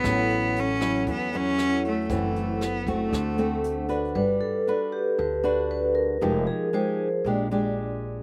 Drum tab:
HH |xxxxxxxx|xxxxxxxx|--------|--------|
SD |r--r--r-|--r-r---|--------|--------|
BD |o---o---|o--oo---|--------|--------|